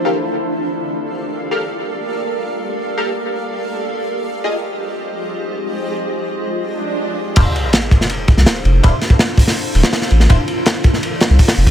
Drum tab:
CC |----------------|----------------|----------------|----------------|
RD |----------------|----------------|----------------|----------------|
HH |----------------|----------------|----------------|----------------|
SD |----------------|----------------|----------------|----------------|
BD |----------------|----------------|----------------|----------------|

CC |----------------|x---------------|----------------|----------------|
RD |----------------|x-x-xxx-x-x-xxx-|x-x-x-----x-x-x-|x-x-xxx-x-x--x--|
HH |----------------|----------------|------o---------|------------o--o|
SD |----------------|----o--o---oo---|--o-o--o---ooo-o|----o--o--o--o--|
BD |----------------|o-----o---o-----|o--o--o---------|o-----o-----o--o|